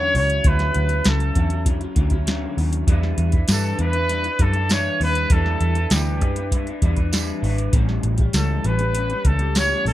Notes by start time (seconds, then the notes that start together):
Already playing: E2 D3 F#3 C#4 E4 C#5
0.15 C#2 F#3 C#4 E4 C#5, open hi-hat
0.30 closed hi-hat
0.44 D2 D3 F#3 C#4 E4 B4, kick, closed hi-hat
0.59 snare, closed hi-hat
0.74 D2, closed hi-hat
0.89 C#4 E4, closed hi-hat
0.93 F#3
1.04 C#2 F#3 C#4 E4 A4, snare, closed hi-hat
1.20 closed hi-hat
1.35 E2 D3 F#3 C#4 E4, kick, closed hi-hat
1.50 C#4 E4, closed hi-hat
1.54 F#3
1.65 D3 F#3 C#4 E4, kick, closed hi-hat
1.80 F#3 C#4 E4, closed hi-hat
1.95 D2 D3 F#3 C#4 E4, kick, closed hi-hat
2.10 C#4 E4, kick, closed hi-hat
2.15 F#3
2.26 D3 F#3 C#4 E4, snare, closed hi-hat
2.57 D#2 D3 F#3 C#4 E4, open hi-hat
2.73 closed hi-hat
2.87 E2 E3 G3 D4 E4 B4, kick, closed hi-hat
3.03 snare
3.18 E2, closed hi-hat
3.32 E4 B4, kick, closed hi-hat
3.37 D4
3.48 G2 E3 G3 D4 E4 A4 B4, snare, closed hi-hat, tambourine
3.77 E2 G3 D4 E4 B4, closed hi-hat
3.93 E4 B4, closed hi-hat
3.97 D4
4.08 G3 D4 E4 B4, closed hi-hat
4.23 D4 E4 B4, closed hi-hat
4.39 F#2 G3 D4 E4 A4 B4, kick, closed hi-hat
4.53 E4 B4, closed hi-hat
4.58 D4
4.69 E3 D4 E4 B4 C#5, snare, closed hi-hat, tambourine
4.99 D#2 G3 D4 E4 B4, open hi-hat
5.15 closed hi-hat
5.30 E2 E3 G3 D4 E4 A4 B4, kick, closed hi-hat
5.46 snare
5.61 E2, closed hi-hat
5.75 E4 B4, closed hi-hat
5.80 D4
5.90 D2 E3 G3 D4 E4 G4 B4, snare, closed hi-hat, tambourine
6.21 F#2 G3 D4 E4 B4, kick, closed hi-hat
6.36 D4 E4 B4, closed hi-hat
6.51 G3 D4 E4 B4, kick, closed hi-hat
6.67 D4 E4 B4, closed hi-hat
6.82 E2 G3 D4 E4 B4, kick, closed hi-hat
6.96 D4 E4 B4, kick, closed hi-hat
7.12 E3 G3 D4 E4 B4, snare, closed hi-hat, tambourine
7.42 G#1 G3 D4 E4, open hi-hat
7.46 B4
7.58 closed hi-hat
7.73 A1 A2 E3 G3 C#4 G4, kick, closed hi-hat
7.89 snare
8.03 A1, closed hi-hat
8.18 C#4 G4, kick, closed hi-hat
8.22 G3
8.33 C#2 A2 E3 G3 C#4 G4 A4, snare, closed hi-hat, tambourine
8.63 A1 E3 G3 C#4 G4 B4, closed hi-hat
8.78 G3 C#4 G4, closed hi-hat
8.93 E3 G3 C#4 G4, closed hi-hat
9.09 G3 C#4 G4, closed hi-hat
9.24 C#2 E3 G3 C#4 A4, kick, closed hi-hat
9.28 G4
9.39 G3 C#4 G4, closed hi-hat
9.55 A2 E3 G3 C#4 G4 C#5, snare, closed hi-hat, tambourine
9.84 A#1 E3 G3 C#4 G4 A4, open hi-hat